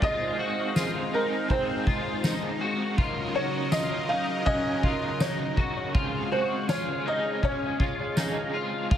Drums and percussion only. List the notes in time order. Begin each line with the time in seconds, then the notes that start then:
0.02 kick
0.76 snare, tambourine
1.50 kick
1.87 kick
2.24 snare, tambourine
2.98 kick
3.72 snare, tambourine
4.46 kick, ride
4.83 kick
5.20 snare, tambourine
5.57 kick
5.95 kick
6.69 snare, tambourine
7.43 kick
7.80 kick
8.17 snare, tambourine
8.91 kick